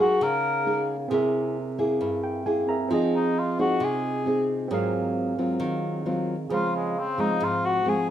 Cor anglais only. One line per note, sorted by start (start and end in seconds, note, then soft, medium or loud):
0.00 0.25 F#4 medium
0.23 0.90 A#4 medium
3.15 3.41 D#4 medium
3.39 3.60 F4 medium
3.60 3.86 F#4 medium
3.84 4.50 G#4 medium
6.55 6.74 F4 medium
6.76 7.01 G#3 soft
6.99 7.22 C4 medium
7.20 7.46 D#4 medium
7.44 7.67 F4 medium
7.65 7.90 F#4 medium
7.89 8.09 G#4 medium